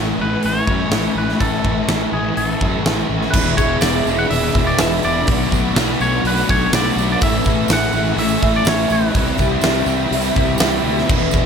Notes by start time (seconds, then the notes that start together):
Already playing: A1 A2 E3 A3 C#4 E4 G#5 B5 C#6
0.18 A1 E3 A3 B3 B4
0.23 A2
0.43 A1 E3 C#5, open hi-hat
0.67 F#2 E3 A3 B3 C#4 E4, kick
0.71 A2
0.91 A1 A2 E3 A3 C#4 E4, snare, open hi-hat
1.15 A1 E3 B4
1.29 snare
1.39 A1 A2 E3 A3 C#4 E4 A4, kick, open hi-hat
1.65 A1 E3, kick
1.88 A1, snare, open hi-hat
2.12 A1 A2 E3 A3 B3 G#4
2.37 A1 E3 A4, open hi-hat
2.60 F#2 A2 E3 A3 B3 C#4 E4, kick
2.86 A1 A2 E3 A3 C#4 E4, snare, open hi-hat
3.09 A1 E3
3.22 snare
3.31 E1 E2 B2 E3 G#3 D4 G#4 B4 E5 B5 D6, kick, crash, tambourine
3.35 E4
3.46 tambourine
3.57 E1 B2 E3 G#3 D4 E4 G#4 C#5, kick, tambourine
3.81 E1 E2 E3 G#3 D4 E4 D5, snare, open hi-hat, tambourine
3.86 B2
4.06 E1 E3 G#3 B3 D4 E4, tambourine
4.11 B2
4.18 F#5, tambourine
4.30 E1 E2 B2 E3 G#3 D4 E4 E5, open hi-hat, tambourine
4.54 E1 B2 E3 G#3 B3 D4 E4, kick
4.67 D5
4.78 E1 E2 B2 E3 G#3 D4 E4 E5, snare, open hi-hat, tambourine
5.03 E1 E3 G#3 D4 E4 D5, tambourine
5.27 B1 B2 F#3 A3 B3 D4 F#4 F#5 D6, kick, open hi-hat, tambourine
5.42 tambourine
5.52 B1 F#3 B3 D4 F#4, kick, tambourine
5.76 B1 B2 F#3 B3 D4 F#4, snare, open hi-hat, tambourine
6.00 B1 F#3 A3 B3 D4 F#4 C#5, tambourine
6.13 tambourine
6.24 B1 B2 F#3 B3 D4 F#4 B4, open hi-hat, tambourine
6.38 tambourine
6.49 B1 F#3 A3 B3 D4 F#4 C#5, kick
6.72 B1 B2 F#3 A3 B3 D4 D5, snare, open hi-hat, tambourine
6.77 F#4
6.96 B1 D4 F#4, tambourine
7.01 B3 D4
7.12 D5
7.21 A1 A2 E3 A3 C#4 E4 E5 G#5 C#6, kick, open hi-hat, tambourine
7.33 tambourine
7.44 A1 C#4 E4 G#4, kick, tambourine
7.48 E3 A3
7.68 A1 A2 E3 A3 C#4, snare, open hi-hat, tambourine
7.73 E4 F#5
7.93 A1 A3 C#4 E4, tambourine
7.97 E3
8.05 tambourine
8.16 A1 A2 E3 A3 C#4 E4 E5, open hi-hat, tambourine
8.29 tambourine
8.40 A1 A3 C#4 E4, kick
8.46 E3
8.56 D5
8.65 A1 A2 E3 A3 C#4 E4 C#5, snare, open hi-hat, tambourine
8.78 tambourine
8.88 A1 A3 C#4 E4, tambourine
8.92 B4
9.14 C2 C3 E3 G3 C4 E4 G4 G5 B5, kick, open hi-hat, tambourine
9.26 tambourine
9.38 C2 G3 C4 E4 G4, kick, tambourine
9.49 tambourine
9.61 C2 C3 E3 G3 C4 E4, snare, open hi-hat, tambourine
9.75 tambourine
9.86 C2 G3 C4 E4, tambourine
10.09 C2 C3 E3 G3 C4 E4, open hi-hat, tambourine
10.22 tambourine
10.34 C2 G3 C4 E4, kick, tambourine
10.46 tambourine
10.58 C2 C3 E3 G3 C4 E4, snare, open hi-hat, tambourine
10.70 tambourine
10.84 D2 G3 C4 E4
10.95 snare, tambourine
11.07 E1 E2 B2 E3 G#3 B3 D4 E4 G#4 D6, kick, crash, tambourine
11.19 tambourine
11.31 E1 E3 G#3 D4 E4 G#4, kick, tambourine
11.36 B2